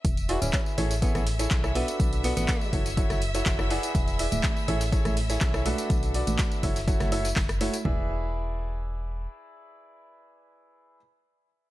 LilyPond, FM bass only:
\new Staff \with { instrumentName = "FM bass" } { \clef bass \time 4/4 \key e \mixolydian \tempo 4 = 123 e,,8. d,,16 r8 a,,8. a,,8. b,,8. r16 | b,,8. a,,16 r8 fis,,8. fis,,8. fis,,8. r16 | e,,8. d,,16 r8 a,,8. a,,8. b,,8. r16 | b,,8. a,,16 r8 fis,,8. fis,,8. fis,,8. r16 |
e,,2. r4 | r1 | }